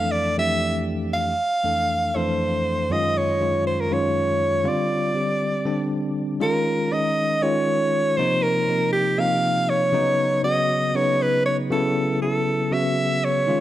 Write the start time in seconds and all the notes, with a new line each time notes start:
Already playing: F2 E3 A3 D4 A4 F5
0.11 D5
0.37 F2 E3 A3 D4 G4 E5
1.14 F5
1.64 F2 E3 A3 D4 A4
2.15 F2 E3 A3 D4 A4 C5
2.90 F#2 D#3 G#3 C#4 F4 D#5
3.17 C#5
3.40 F#2 D#3 G#3 C#4 F4
3.67 C5
3.81 A#4
3.91 F#2 D#3 G#3 C#4 F4 C#5
4.64 D3 G3 C4 F4
4.68 D5
5.14 D3 G3 C4 G4
5.65 D3 G3 C4 D4
6.40 D#3 G#3 C#4 F4 A#4
6.91 D#3 G#3 C#4 D#4 D#5
7.42 D#3 G#3 C#4 F4 C#5
8.17 C3 F3 A#3 D#4 C5
8.43 A#4
8.69 C3 F3 A#3 D#4
8.93 G4
9.18 C3 F3 A#3 D#4 F5
9.70 C#5
9.92 C#3 F#3 B3 D#4
10.43 C#3 F#3 B3 F#4 D#5
10.94 C#3 F#3 B3 D#4 C#5
11.22 B4
11.46 C#5
11.70 C#3 F#3 B3 E4 A4
12.21 C#3 F#3 B3 E4 A4
12.71 C#3 F#3 B3 F#4 E5
13.24 C#5
13.47 D#3 G#3 C#4 F4